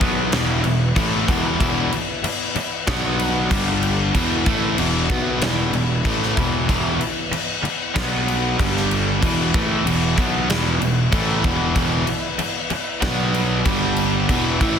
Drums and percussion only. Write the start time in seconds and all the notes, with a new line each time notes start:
0.01 kick, crash
0.32 snare, crash
0.64 crash
0.96 kick, crash
1.28 kick, crash
1.60 kick, crash
1.92 crash
2.24 crash
2.55 crash
2.87 kick, snare, crash
3.19 crash
3.51 kick, crash
3.83 crash
4.15 kick, crash
4.46 kick, crash
4.78 crash
5.10 kick, crash
5.41 snare, crash
5.73 crash
6.05 kick, crash
6.23 snare
6.37 kick, crash
6.69 kick, crash
7.01 crash
7.33 crash
7.65 crash
7.96 kick, snare, crash
8.28 crash
8.59 kick, crash
8.77 snare
8.91 crash
9.23 kick, crash
9.54 kick, crash
9.87 crash
10.18 kick, crash
10.50 snare, crash
10.82 crash
11.13 kick, crash
11.44 kick, crash
11.76 kick, crash
12.07 crash
12.39 crash
12.70 crash
13.02 kick, snare, crash
13.34 crash
13.65 kick, crash
13.96 crash
14.29 kick, crash
14.61 kick, crash